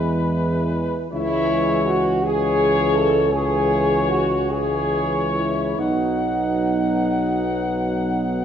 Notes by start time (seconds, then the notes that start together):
Already playing: E2 E3 G#3 E4 B4
1.12 C#2 E3 G#3 E4 C#5
1.86 F#4
2.23 E3 G#3 G#4 C#5
2.94 A4
3.32 E3 G#3 G#4 C#5
4.09 F#4
4.50 E3 G#3 G#4 C#5
5.34 E4
5.77 B1 F#3 B3 D#4 F#5